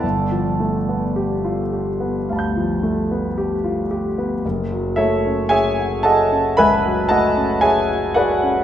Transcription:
<<
  \new Staff \with { instrumentName = "Grand piano" } { \time 4/4 \key g \mixolydian \tempo 4 = 56 << { r2 <f'' a'' b'' g'''>2 | r1 | } \\ { <a' d'' f'' a''>2.~ <a' d'' f'' a''>8 r8 | r8 <a' cis'' e''>8 <gis' cis'' e'' gis''>8 <a' dis'' fis'' a''>8 <b' e'' gis'' b''>8 <a' dis'' fis'' a''>8 <gis' cis'' e'' gis''>8 <fis' b' d'' fis''>8 | } >> }
  \new Staff \with { instrumentName = "Grand piano" } { \time 4/4 \key g \mixolydian g,,16 f16 a16 b16 g'16 f'16 g'16 b16 d,16 f16 a16 b16 g'16 f'16 g'16 b16 | fis,,16 fis16 a16 cis'8 fis'16 gis'16 cis'16 cis,16 fis16 a16 cis'8 fis'16 gis'16 cis'16 | }
>>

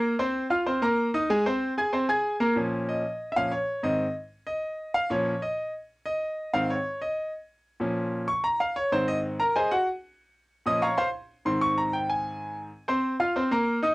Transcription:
<<
  \new Staff \with { instrumentName = "Grand piano" } { \time 4/4 \key bes \minor \tempo 4 = 189 <bes bes' bes''>8 <c' c'' c'''>4 <f' f'' f'''>8 <c' c'' c'''>8 <bes bes' bes''>4 <ees' ees'' ees'''>8 | <aes aes' aes''>8 <c' c'' c'''>4 <aes' aes'' aes'''>8 <c' c'' c'''>8 <aes' aes'' aes'''>4 <bes bes' bes''>8 | r4 ees''4. <e'' f''>8 des''4 | ees''4 r4 ees''4. f''8 |
des''4 ees''4 r4 ees''4~ | ees''8 f''8 des''4 ees''4 r4 | r2 des'''8 bes''8 f''8 des''8 | c''8 ees''8 r8 <bes' bes''>8 <aes' c'' ees'' aes''>8 <ges' ges''>8 r4 |
r4. <ees'' ees'''>8 <des'' f'' bes'' des'''>8 <c'' f'' c'''>8 r4 | c'''8 des'''8 bes''8 g''8 aes''4.~ aes''16 r16 | r8 <c' c'' c'''>4 <f' f'' f'''>8 <c' c'' c'''>8 <bes bes' bes''>4 <ees' ees'' ees'''>8 | }
  \new Staff \with { instrumentName = "Grand piano" } { \clef bass \time 4/4 \key bes \minor r1 | r1 | <bes, f des'>4. r4 <bes, f des'>8 r4 | <aes, ees c'>8 r2. r8 |
<bes, f des'>8 r2. r8 | r8 <aes, ees c'>8 r2. | r8 <bes, f des'>4. r2 | <aes, ees c'>4. r2 r8 |
r4. <bes, f des'>8 r2 | <aes, ees c'>1 | r1 | }
>>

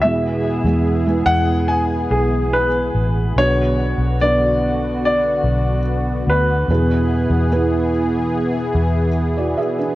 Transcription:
<<
  \new Staff \with { instrumentName = "Grand piano" } { \time 4/4 \key b \dorian \tempo 4 = 73 e''4. fis''8 gis''8 gis'8 b'4 | cis''4 d''4 d''4. b'8~ | b'4. r2 r8 | }
  \new Staff \with { instrumentName = "Felt piano" } { \time 4/4 \key b \dorian <gis b e' gis'>8. <gis b e' gis'>8 <gis b e' gis'>2 r8. | <b d' fis' b'>4 <b d' fis' b'>2 r4 | <b e' gis' b'>4 <b e' gis' b'>2 r16 <fis' d''>16 <gis' e''>16 <d' b'>16 | }
  \new Staff \with { instrumentName = "Felt piano" } { \clef bass \time 4/4 \key b \dorian b,4. r2 r8 | r1 | b,4. r2 r8 | }
  \new Staff \with { instrumentName = "Analog synth pad" } { \time 4/4 \key b \dorian << { <e gis'>1 | <d fis'>1 | <e gis'>1 | } \\ { b1 | b1~ | b1 | } >> }
  \new Staff \with { instrumentName = "Fingered electric bass" } { \clef bass \time 4/4 \key b \dorian e,8. e,8. e,4 b,,4 a,,8 | b,,8. b,,4.~ b,,16 b,,4 d,8 | e,8. e,4.~ e,16 e,4 r8 | }
>>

